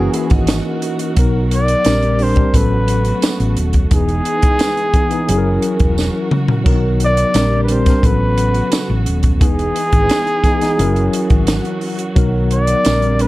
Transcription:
Already playing: tine electric piano E3 A#3 C#4 F#4, string section E3 C#4 F#4 A#4, clean electric guitar F#4 A#4, flugelhorn G#4
0.14 clean electric guitar E4 G#4, closed hi-hat
0.30 fingered electric bass G#1, clean electric guitar D#4 F#4, kick, closed hi-hat
0.47 snare, closed hi-hat, tambourine
0.82 closed hi-hat
0.99 closed hi-hat
1.16 fingered electric bass B1, string section D#3 B3, tine electric piano F#3 B3 D#4 A#4, kick, closed hi-hat
1.51 flugelhorn D5, closed hi-hat
1.68 closed hi-hat
1.84 fingered electric bass A#1, string section D3 C4 G4, tine electric piano G3 C4 D4, snare, closed hi-hat, tambourine
1.89 tine electric piano A#4
2.02 closed hi-hat
2.19 tine electric piano G3 C4 D4, open hi-hat
2.23 tine electric piano A#4, flugelhorn C5
2.36 tine electric piano G3 C4 D4 A#4, kick, closed hi-hat
2.53 fingered electric bass A1, string section C#3 A3 B3 F#4, tine electric piano F#3 B3 C#4 A4, flugelhorn B4, kick, closed hi-hat
2.88 closed hi-hat
3.05 closed hi-hat
3.22 snare, closed hi-hat, tambourine
3.40 fingered electric bass A1, closed hi-hat
3.57 fingered electric bass D#1, closed hi-hat
3.73 kick, closed hi-hat
3.90 fingered electric bass E1, string section E3 G#3 B3 D#4, tine electric piano E3 B3 D#4 G#4, flugelhorn G#4, kick, closed hi-hat
4.09 closed hi-hat
4.25 closed hi-hat
4.42 kick, closed hi-hat
4.59 snare, closed hi-hat, tambourine
4.77 closed hi-hat
4.94 tine electric piano E3 B3 D#4 G#4, kick, closed hi-hat
5.10 tine electric piano E3 B3 D#4 G#4, closed hi-hat
5.28 fingered electric bass F#1, string section E3 C#4 F#4 A#4, tine electric piano F#3 C#4 E4 G#4, closed hi-hat
5.38 tine electric piano A#4
5.62 closed hi-hat
5.79 fingered electric bass E1, kick, closed hi-hat
5.98 snare, tambourine
6.31 mid tom
6.48 floor tom
6.64 fingered electric bass B1, string section D#3 B3, tine electric piano F#3 B3 D4 A#4, kick, splash
6.73 tine electric piano D#4
7.00 closed hi-hat
7.04 flugelhorn D5
7.17 closed hi-hat
7.34 fingered electric bass A#1, string section D3 A#3 C4 G4, tine electric piano G3 C4 D4 A#4, snare, closed hi-hat, tambourine
7.64 flugelhorn B4
7.68 tine electric piano G3 C4 D4 A#4, flugelhorn C5, closed hi-hat
7.86 tine electric piano G3 C4 D4 A#4, kick, snare, closed hi-hat
8.03 fingered electric bass A1, string section C#3 A3 B3 F#4, tine electric piano F#3 B3 C#4 A4, flugelhorn B4, kick, closed hi-hat
8.38 closed hi-hat
8.54 closed hi-hat
8.72 snare, closed hi-hat, tambourine
8.90 fingered electric bass A1
9.06 fingered electric bass D#1, closed hi-hat
9.23 kick, closed hi-hat
9.40 fingered electric bass E1, string section E3 G#3 D#4, tine electric piano E3 B3 D#4 G#4, flugelhorn G#4, kick, closed hi-hat
9.59 closed hi-hat
9.76 closed hi-hat
9.92 fingered electric bass G#1, kick, closed hi-hat
10.09 snare, closed hi-hat, tambourine
10.27 closed hi-hat
10.44 tine electric piano E3 B3 D#4 G#4, kick, closed hi-hat
10.61 tine electric piano E3 B3 D#4 G#4, snare, closed hi-hat
10.78 fingered electric bass F#1, string section E3 F#3 C#4 F#4, tine electric piano F#3 C#4 E4 A#4, closed hi-hat
10.96 closed hi-hat
11.13 closed hi-hat
11.30 fingered electric bass G#1, kick, closed hi-hat
11.47 snare, closed hi-hat, tambourine
11.65 closed hi-hat
11.81 open hi-hat
11.99 closed hi-hat
12.15 fingered electric bass B1, string section D#3 B3, tine electric piano F#3 B3 D#4 A#4, kick, closed hi-hat
12.51 flugelhorn D5, closed hi-hat
12.67 closed hi-hat
12.85 fingered electric bass A#1, string section D3 G3 C4, tine electric piano G3 C4 D4 A#4, snare, closed hi-hat, tambourine
13.02 closed hi-hat
13.19 tine electric piano G3 C4 D4 A#4, flugelhorn B4, closed hi-hat

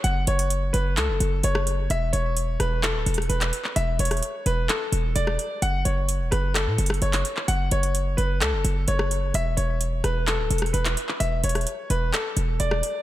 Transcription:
0.04 808-style bass F#1, grand piano F#5, closed hi-hat
0.27 808-style bass F#1, grand piano C#5, closed hi-hat, open hi-hat
0.39 closed hi-hat
0.50 closed hi-hat
0.73 808-style bass F#1, grand piano B4, closed hi-hat
0.97 808-style bass C#2, grand piano A4, clap, closed hi-hat
1.09 808-style bass F#1
1.20 808-style bass F#1, closed hi-hat
1.44 808-style bass F#1, grand piano C#5, closed hi-hat
1.55 cross-stick
1.67 closed hi-hat
1.90 808-style bass E1, grand piano E5, closed hi-hat
2.13 808-style bass E1, grand piano C#5, closed hi-hat
2.37 closed hi-hat
2.60 808-style bass E1, grand piano B4, cross-stick, closed hi-hat
2.83 grand piano A4, clap, closed hi-hat
2.95 808-style bass D1
3.06 808-style bass E1, closed hi-hat
3.14 cross-stick, closed hi-hat
3.22 closed hi-hat
3.29 808-style bass E1, grand piano B4, closed hi-hat
3.41 clap, closed hi-hat
3.53 closed hi-hat
3.64 clap
3.76 808-style bass E1, grand piano E5, closed hi-hat
3.99 808-style bass E1, grand piano C#5, closed hi-hat, open hi-hat
4.05 closed hi-hat
4.11 cross-stick, closed hi-hat
4.17 closed hi-hat
4.23 closed hi-hat
4.46 808-style bass E1, grand piano B4, closed hi-hat
4.69 grand piano A4, clap, closed hi-hat
4.92 808-style bass E1, closed hi-hat
5.16 808-style bass E1, grand piano D5, closed hi-hat
5.27 cross-stick
5.39 closed hi-hat
5.62 808-style bass F#1, grand piano F#5, closed hi-hat
5.85 808-style bass F#1, grand piano C#5, closed hi-hat
6.09 closed hi-hat
6.20 808-style bass E1
6.31 808-style bass F#1, grand piano B4, cross-stick, closed hi-hat
6.54 grand piano A4, clap, closed hi-hat
6.67 808-style bass A2
6.78 808-style bass F#1, closed hi-hat
6.86 cross-stick, closed hi-hat
6.94 closed hi-hat
7.02 808-style bass F#1, grand piano C#5, closed hi-hat
7.13 clap, closed hi-hat
7.25 closed hi-hat
7.37 clap
7.48 808-style bass F#1, grand piano F#5, closed hi-hat
7.71 808-style bass F#1, grand piano C#5, closed hi-hat, open hi-hat
7.83 closed hi-hat
7.95 closed hi-hat
8.17 808-style bass F#1, grand piano B4, closed hi-hat
8.41 808-style bass C#2, grand piano A4, clap, closed hi-hat
8.53 808-style bass F#1
8.65 808-style bass F#1, closed hi-hat
8.88 808-style bass F#1, grand piano C#5, closed hi-hat
8.99 cross-stick
9.11 closed hi-hat
9.34 808-style bass E1, grand piano E5, closed hi-hat
9.57 808-style bass E1, grand piano C#5, closed hi-hat
9.81 closed hi-hat
10.04 808-style bass E1, grand piano B4, cross-stick, closed hi-hat
10.27 grand piano A4, clap, closed hi-hat
10.39 808-style bass D1
10.51 808-style bass E1, closed hi-hat
10.58 cross-stick, closed hi-hat
10.66 closed hi-hat
10.73 808-style bass E1, grand piano B4, closed hi-hat
10.85 clap, closed hi-hat
10.97 closed hi-hat
11.09 clap
11.20 808-style bass E1, grand piano E5, closed hi-hat
11.44 808-style bass E1, grand piano C#5, closed hi-hat, open hi-hat
11.49 closed hi-hat
11.55 cross-stick, closed hi-hat
11.61 closed hi-hat
11.67 closed hi-hat
11.90 808-style bass E1, grand piano B4, closed hi-hat
12.13 grand piano A4, clap, closed hi-hat
12.37 808-style bass E1, closed hi-hat
12.60 808-style bass E1, grand piano D5, closed hi-hat
12.71 cross-stick
12.83 closed hi-hat

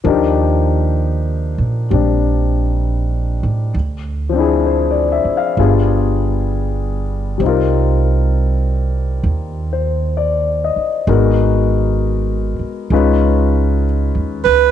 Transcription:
0.04 upright bass D#2, grand piano F3 D4 D#4 A#4
0.09 grand piano G4
1.58 upright bass A#2
1.90 upright bass A#1, grand piano G3 C4 D4
3.43 upright bass A2
3.74 upright bass D2
4.29 grand piano F3 C4
4.35 grand piano D4 E4
4.40 grand piano G#4
4.66 grand piano C5
4.91 grand piano D5
5.12 grand piano E5
5.25 muted upright bass stroke
5.37 grand piano F5
5.57 upright bass G1, grand piano G3 B3 D4 F4 G#4
7.38 upright bass C2, grand piano G3 C4
7.43 grand piano D#4 F4
7.48 grand piano A#4
9.23 upright bass D#2
9.73 grand piano C5
10.17 grand piano D5
10.64 grand piano D#5
10.76 muted upright bass stroke
11.07 upright bass G#1, grand piano G#3 B3 D#4 F#4 A#4
12.59 muted upright bass stroke
12.90 upright bass C#2, grand piano G#3 C#4 D#4 F4 B4
14.15 upright bass D#2
14.45 upright bass C#2, alto saxophone B4

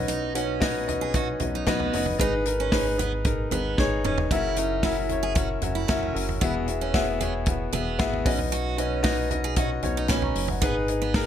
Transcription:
Already playing: analog synth bass B1, grand piano C#4 D#4 F#4 B4 D#5
0.08 steel-string acoustic guitar D#4, hi-hat pedal, open hi-hat
0.34 grand piano C#4 D#4 F#4 B4 F#5, steel-string acoustic guitar C#4, hi-hat pedal, open hi-hat
0.60 grand piano C#4 D#4 F#4 B4 D#5, steel-string acoustic guitar D#4, kick, snare, hi-hat pedal, open hi-hat
0.87 grand piano C#4 D#4 F#4 B4 D#5, floor tom, hi-hat pedal, open hi-hat
1.01 steel-string acoustic guitar G#4
1.14 grand piano C#4 D#4 F#4 B4 D#5, steel-string acoustic guitar F#4, kick, hi-hat pedal, open hi-hat
1.39 analog synth bass B1, grand piano C#4 D#4 F#4 B4 D#5, floor tom, hi-hat pedal, open hi-hat
1.55 steel-string acoustic guitar D#4
1.66 analog synth bass B1, steel-string acoustic guitar B3, grand piano C#4 D#4 F#4 B4 D#5, kick, snare, hi-hat pedal, open hi-hat
1.80 floor tom
1.93 analog synth bass F#1, grand piano C#4 D#4 F#4 B4 D#5, hi-hat pedal, open hi-hat
2.06 floor tom
2.19 analog synth bass G#1, grand piano D#4 G#4 B4, steel-string acoustic guitar D#4, kick, hi-hat pedal, open hi-hat
2.46 grand piano D#4 G#4 A#4, hi-hat pedal, open hi-hat
2.60 steel-string acoustic guitar C#4
2.72 grand piano D#4 G#4 B4, kick, snare, hi-hat pedal, open hi-hat
2.98 steel-string acoustic guitar B3, grand piano D#4 G#4 B4, floor tom, hi-hat pedal, open hi-hat
3.25 grand piano D#4 G#4 A#4, kick, hi-hat pedal, open hi-hat
3.50 analog synth bass G#1, steel-string acoustic guitar B3, grand piano D#4 G#4 B4, floor tom, hi-hat pedal, open hi-hat
3.78 analog synth bass G#1, grand piano D#4 G#4 C#5, kick, snare
4.03 analog synth bass E1, steel-string acoustic guitar C#4, grand piano D#4 G#4 C#5, mid tom
4.18 floor tom
4.31 analog synth bass F#1, grand piano C#3 C#4 E4 F#4 A#4 E5, steel-string acoustic guitar E4, kick, hi-hat pedal, open hi-hat
4.57 grand piano C#4 E4 F#4 A#4 E5, steel-string acoustic guitar D#4, hi-hat pedal, open hi-hat
4.83 grand piano C#4 E4 F#4 A#4 E5, steel-string acoustic guitar E4, kick, snare, hi-hat pedal, open hi-hat
5.09 grand piano C#4 E4 F#4 A#4 C#5, floor tom, hi-hat pedal, open hi-hat
5.23 steel-string acoustic guitar G#4
5.35 grand piano C#4 E4 F#4 A#4 E5, steel-string acoustic guitar F#4, kick, hi-hat pedal, open hi-hat
5.62 analog synth bass F#1, grand piano C#4 E4 F#4 A#4 E5, floor tom, hi-hat pedal, open hi-hat
5.75 steel-string acoustic guitar E4
5.88 analog synth bass F#1, grand piano C#4 E4 F#4 A#4 E5, steel-string acoustic guitar C#4, kick, snare, hi-hat pedal, open hi-hat
6.03 floor tom
6.14 analog synth bass F#1, grand piano C#4 E4 F#4 A#4 E5, hi-hat pedal, open hi-hat
6.29 floor tom
6.41 analog synth bass E1, grand piano B2 B3 E4 F#4 G#4 E5, steel-string acoustic guitar E4, kick, hi-hat pedal, open hi-hat
6.68 grand piano B3 E4 F#4 G#4 E5, hi-hat pedal, open hi-hat
6.81 steel-string acoustic guitar C#4
6.94 grand piano B3 E4 F#4 G#4 E5, kick, snare, hi-hat pedal, open hi-hat
7.20 grand piano B3 E4 F#4 G#4 C#5, steel-string acoustic guitar B3, floor tom, hi-hat pedal, open hi-hat
7.46 grand piano B3 E4 F#4 G#4 E5, kick, hi-hat pedal, open hi-hat
7.72 analog synth bass E1, grand piano B3 E4 F#4 G#4 E5, steel-string acoustic guitar B3, floor tom, hi-hat pedal, open hi-hat
7.99 analog synth bass G#1, grand piano B3 E4 F#4 G#4 E5, kick, snare, hi-hat pedal, open hi-hat
8.13 floor tom
8.24 analog synth bass B1, grand piano C#4 D#4 F#4 B4 D#5, steel-string acoustic guitar C#4, kick, hi-hat pedal, open hi-hat
8.39 floor tom
8.52 steel-string acoustic guitar F#4, hi-hat pedal, open hi-hat
8.77 grand piano C#4 D#4 F#4 B4 D#5, steel-string acoustic guitar C#4, hi-hat pedal, open hi-hat
9.03 grand piano C#4 D#4 F#4 B4 D#5, steel-string acoustic guitar D#4, kick, snare, hi-hat pedal, open hi-hat
9.30 grand piano C#4 D#4 F#4 B4 D#5, floor tom, hi-hat pedal, open hi-hat
9.44 steel-string acoustic guitar G#4
9.56 grand piano C#4 D#4 F#4 B4 D#5, steel-string acoustic guitar F#4, kick, hi-hat pedal, open hi-hat
9.82 analog synth bass B1, grand piano C#4 D#4 F#4 B4 C#5, floor tom, hi-hat pedal, open hi-hat
9.97 steel-string acoustic guitar D#4
10.08 analog synth bass B1, steel-string acoustic guitar C#4, grand piano G#5 B5, kick, snare, hi-hat pedal, open hi-hat
10.22 grand piano A#5 C#6, floor tom
10.35 analog synth bass F#1, hi-hat pedal, open hi-hat
10.48 grand piano D#5 F#5, floor tom
10.61 analog synth bass G#1, steel-string acoustic guitar B3, grand piano D#4 G#4 B4, kick, hi-hat pedal, open hi-hat
10.88 grand piano D#4 G#4 B4, hi-hat pedal, open hi-hat
11.02 steel-string acoustic guitar B3
11.14 grand piano D#4 G#4 A#4, kick, snare, hi-hat pedal, open hi-hat

